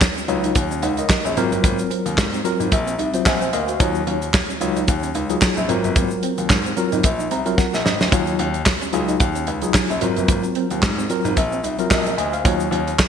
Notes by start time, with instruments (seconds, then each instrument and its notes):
0.01 kick, snare, clap, shaker
0.16 clean electric guitar C#4, shaker
0.28 grand piano C#2, tine electric piano F#3 D#4 F4 C#5, muted clean electric guitar stroke, closed hi-hat, shaker
0.44 clean electric guitar D#4, closed hi-hat, shaker
0.55 grand piano D#2, muted clean electric guitar stroke, kick, closed hi-hat, shaker
0.71 clean electric guitar C#4, shaker
0.83 grand piano C#2, clean electric guitar D#4, tine electric piano C#5 F#5, closed hi-hat, shaker
0.97 tine electric piano A#4 D#5, closed hi-hat, shaker
1.09 kick, snare, clap, shaker
1.25 grand piano A#1, clean electric guitar C#4, tine electric piano G#4 C#5, shaker
1.37 grand piano G#1, tine electric piano F#3 C4 F4 A#4, clean electric guitar C4, closed hi-hat, shaker
1.52 grand piano G1, closed hi-hat, shaker
1.64 grand piano G#1, clean electric guitar A#3, kick, closed hi-hat, shaker
1.79 closed hi-hat, shaker
1.91 clean electric guitar C4, closed hi-hat
2.06 grand piano D#2, muted clean electric guitar stroke, closed hi-hat, shaker
2.18 grand piano G#2, kick, snare, clap, shaker
2.33 clean electric guitar C4, closed hi-hat, shaker
2.44 tine electric piano F#3 C4 F4 A#4, muted clean electric guitar stroke, closed hi-hat, shaker
2.60 grand piano G#1, clean electric guitar D#4, closed hi-hat, shaker
2.72 grand piano A#1, muted clean electric guitar stroke, kick, closed hi-hat, shaker
2.87 clean electric guitar C4, closed hi-hat, shaker
2.99 grand piano C2, clean electric guitar D#4, closed hi-hat, shaker
3.14 tine electric piano F#3 C4 F4 C5, closed hi-hat, shaker
3.26 grand piano A#1, tine electric piano C5 F#5 G#5, kick, snare, clap, shaker
3.41 clean electric guitar C4, closed hi-hat, shaker
3.53 grand piano D2, clean electric guitar A#3, tine electric piano A#4 D#5 F5, closed hi-hat, shaker
3.68 tine electric piano F#4 C5, closed hi-hat, shaker
3.80 grand piano D#2, tine electric piano F#3 D#4 F4 C#5, clean electric guitar A#3, kick, closed hi-hat, shaker
3.95 shaker
4.07 grand piano D#2, clean electric guitar C#4, closed hi-hat
4.22 muted clean electric guitar stroke, closed hi-hat, shaker
4.34 kick, snare, clap, shaker
4.49 clean electric guitar C#4, shaker
4.61 grand piano C#2, tine electric piano F#3 D#4 F4 C#5, muted clean electric guitar stroke, closed hi-hat, shaker
4.76 clean electric guitar D#4, closed hi-hat, shaker
4.88 grand piano D#2, muted clean electric guitar stroke, kick, closed hi-hat, shaker
5.03 clean electric guitar C#4, closed hi-hat, shaker
5.15 grand piano C#2, clean electric guitar D#4, closed hi-hat, shaker
5.30 tine electric piano F#3 D#4 F4 G#4, closed hi-hat, shaker
5.41 kick, snare, clap, shaker
5.57 grand piano A#1, clean electric guitar C#4, shaker
5.68 grand piano G#1, tine electric piano F#3 C4 F4 A#4, clean electric guitar C4, closed hi-hat, shaker
5.84 grand piano G1, closed hi-hat, shaker
5.96 grand piano G#1, clean electric guitar A#3, kick, closed hi-hat, shaker
6.11 shaker
6.23 clean electric guitar C4, closed hi-hat, shaker
6.38 grand piano D#2, muted clean electric guitar stroke, closed hi-hat, shaker
6.50 grand piano G#2, kick, snare, clap, shaker
6.65 clean electric guitar C4, closed hi-hat, shaker
6.76 tine electric piano F#3 C4 F4 A#4, muted clean electric guitar stroke, closed hi-hat, shaker
6.92 grand piano G#1, clean electric guitar D#4, closed hi-hat, shaker
7.03 grand piano A#1, muted clean electric guitar stroke, kick, closed hi-hat, shaker
7.19 clean electric guitar D#4, shaker
7.31 grand piano C2, clean electric guitar C4, tine electric piano A#5, closed hi-hat, shaker
7.46 tine electric piano F#3 C4 F4 A#4, closed hi-hat, shaker
7.58 tine electric piano F#5, kick, snare, shaker
7.73 grand piano A#1, clean electric guitar A#3, snare, shaker
7.85 grand piano G#1, clean electric guitar C4, tine electric piano D#5, snare, shaker
8.00 grand piano D2, snare, shaker
8.12 grand piano D#2, tine electric piano F#3 D#4 F4 C#5, clean electric guitar A#3, kick, closed hi-hat, shaker
8.27 closed hi-hat, shaker
8.39 grand piano D#2, clean electric guitar C#4, closed hi-hat
8.54 muted clean electric guitar stroke, closed hi-hat, shaker
8.66 kick, snare, clap, shaker
8.81 clean electric guitar C#4, closed hi-hat, shaker
8.93 grand piano C#2, tine electric piano F#3 D#4 F4 G#4, muted clean electric guitar stroke, closed hi-hat, shaker
9.08 clean electric guitar D#4, closed hi-hat, shaker
9.20 grand piano D#2, muted clean electric guitar stroke, kick, closed hi-hat, shaker
9.35 clean electric guitar C#4, closed hi-hat, shaker
9.47 grand piano C#2, clean electric guitar D#4, closed hi-hat, shaker
9.62 tine electric piano F#3 D#4 F4 G#4, closed hi-hat, shaker
9.74 kick, snare, clap, shaker
9.89 grand piano A#1, clean electric guitar C#4, closed hi-hat, shaker
10.01 grand piano G#1, tine electric piano F#3 C4 F4 A#4, clean electric guitar C4, closed hi-hat, shaker
10.16 grand piano G1, closed hi-hat, shaker
10.28 grand piano G#1, clean electric guitar A#3, kick, closed hi-hat, shaker
10.43 closed hi-hat, shaker
10.55 clean electric guitar C4, closed hi-hat
10.71 grand piano D#2, muted clean electric guitar stroke, closed hi-hat, shaker
10.82 grand piano G#2, kick, snare, clap, shaker
10.98 clean electric guitar C4, shaker
11.10 tine electric piano F#3 C4 F4 A#4, muted clean electric guitar stroke, closed hi-hat, shaker
11.24 grand piano G#1, clean electric guitar D#4, closed hi-hat, shaker
11.37 grand piano A#1, kick, closed hi-hat, shaker
11.52 clean electric guitar C4, shaker
11.63 grand piano C2, clean electric guitar D#4, closed hi-hat, shaker
11.79 tine electric piano F#3 C4 F4 A#4, closed hi-hat, shaker
11.91 grand piano A#1, tine electric piano A#4 D#5, kick, snare, clap, shaker
12.06 clean electric guitar C4, closed hi-hat, shaker
12.18 grand piano D2, clean electric guitar A#3, tine electric piano D#5 G#5, closed hi-hat, shaker
12.33 tine electric piano C5 F5, closed hi-hat, shaker
12.44 grand piano D#2, tine electric piano F#3 D#4 F4 C#5, clean electric guitar A#3, kick, closed hi-hat, shaker
12.60 closed hi-hat, shaker
12.71 grand piano D#2, clean electric guitar C#4, closed hi-hat
12.88 muted clean electric guitar stroke, closed hi-hat, shaker
12.99 kick, snare, clap, shaker